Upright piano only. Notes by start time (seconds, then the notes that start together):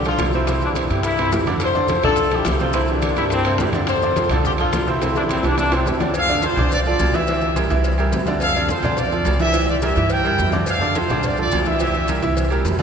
0.06 F3 F4 A4
0.34 C3 C4 C5
0.48 C3 C4 C5
0.62 E3 E4 G4
0.90 E3 E4 G4
1.19 C3 C4 C5
1.33 E3 E4 G4
1.47 D3 D4 D5
1.75 D3 D4 D5
1.90 F3 F4 A4
2.04 D3 D4 D5
2.32 F3 F4 A4
2.60 C3 C4 C5
2.75 C3 C4 C5
2.89 E3 E4 G4
3.17 E3 E4 G4
3.46 C3 C4 C5
3.61 E3 E4 G4
3.74 D3 D4 D5
4.03 D3 D4 D5
4.17 F3 F4 A4
4.31 D3 D4 D5
4.59 F3 F4 A4
4.87 C3 C4 C5
5.02 C3 C4 C5
5.16 E3 E4 G4
5.44 E3 E4 G4
5.73 C3 C4 C5
5.87 E3 E4 G4
6.00 D3 D4 D5
6.29 D3 D4 D5
6.43 F3 F4 A4
6.58 D3 D4 D5
6.86 F3 F4 A4
7.14 E3 E4 E5
7.28 E3 E4 E5
7.56 G3 G4 A#4
7.71 E3 E4 E5
7.99 G3 G4 A#4
8.27 D3 D4 D5
8.56 D3 D4 D5
8.70 F3 F4 A4
8.84 D3 D4 D5
9.12 F3 F4 A4
9.40 E3 E4 E5
9.54 E3 E4 E5
9.82 G3 G4 A#4
9.97 E3 E4 E5
10.24 G3 G4 A#4
10.53 D3 D4 D5
10.81 D3 D4 D5
10.96 F3 F4 A4
11.10 D3 D4 D5
11.38 F3 F4 A4
11.66 E3 E4 E5
11.81 E3 E4 E5
12.09 G3 G4 A#4
12.22 E3 E4 E5
12.51 G3 G4 A#4
12.79 D3 D4